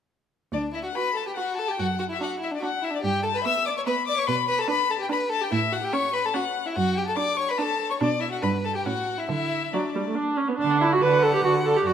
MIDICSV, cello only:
0, 0, Header, 1, 2, 480
1, 0, Start_track
1, 0, Key_signature, 2, "major"
1, 0, Tempo, 421053
1, 595, Time_signature, 3, 2, 24, 8
1, 2510, Tempo, 414365
1, 8750, Tempo, 427655
1, 13627, End_track
2, 0, Start_track
2, 0, Title_t, "Cello"
2, 0, Program_c, 0, 42
2, 597, Note_on_c, 0, 38, 46
2, 978, Note_off_c, 0, 38, 0
2, 2043, Note_on_c, 0, 42, 49
2, 2416, Note_off_c, 0, 42, 0
2, 3479, Note_on_c, 0, 43, 53
2, 3854, Note_off_c, 0, 43, 0
2, 4919, Note_on_c, 0, 47, 58
2, 5293, Note_off_c, 0, 47, 0
2, 6354, Note_on_c, 0, 45, 61
2, 6733, Note_off_c, 0, 45, 0
2, 7800, Note_on_c, 0, 42, 63
2, 8171, Note_off_c, 0, 42, 0
2, 9226, Note_on_c, 0, 47, 62
2, 9597, Note_off_c, 0, 47, 0
2, 9696, Note_on_c, 0, 43, 56
2, 10074, Note_off_c, 0, 43, 0
2, 10179, Note_on_c, 0, 45, 47
2, 10562, Note_off_c, 0, 45, 0
2, 10663, Note_on_c, 0, 50, 49
2, 11054, Note_off_c, 0, 50, 0
2, 12133, Note_on_c, 0, 50, 49
2, 12557, Note_off_c, 0, 50, 0
2, 12611, Note_on_c, 0, 50, 50
2, 13025, Note_off_c, 0, 50, 0
2, 13081, Note_on_c, 0, 50, 45
2, 13494, Note_off_c, 0, 50, 0
2, 13550, Note_on_c, 0, 42, 51
2, 13627, Note_off_c, 0, 42, 0
2, 13627, End_track
0, 0, End_of_file